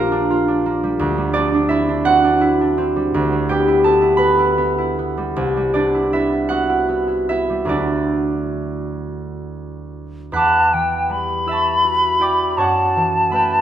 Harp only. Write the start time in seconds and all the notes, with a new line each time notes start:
Already playing: A#1 G3 A#3 D4 F4 G4 A#4 D5 F5 G5
0.12 D4
0.31 F4
0.48 D4
0.66 A#3
0.83 G3
0.99 D2
1.18 G3
1.34 C4 D4 D5
1.54 D4
1.69 E4 E5
1.89 D4
2.05 C4 F#4 F#5
2.24 D4
2.41 E4
2.61 D4
2.78 C4
2.96 G3
3.14 D2
3.32 G3
3.49 B3 G4 G5
3.68 E4
3.84 B3 A4 A5
4.02 E4
4.17 B3 B4 B5
4.39 E4
4.58 B3
4.78 E4
4.99 B3
5.17 G3
5.36 C2
5.57 G3
5.74 B3 D4 D5
5.94 E4
6.13 B3 E4 E5
6.32 E4
6.49 B3 F#4 F#5
6.69 E4
6.89 B3
7.08 E4
7.29 B3 E4 E5
7.50 G3
7.65 D2 F#3 A3 E4
7.69 D4 E4 D5
10.32 E2 F#5 B5 F#6
10.36 D6
10.73 E3
11.10 G3
11.46 E4 E5 E6
11.51 A5 C#6
11.84 F#4
12.20 E4 D5 G5 B5 D6
12.57 F#2 C#5 F#5 A5 C#6
12.96 E3
13.30 A3 B4 E5 B5
13.35 G5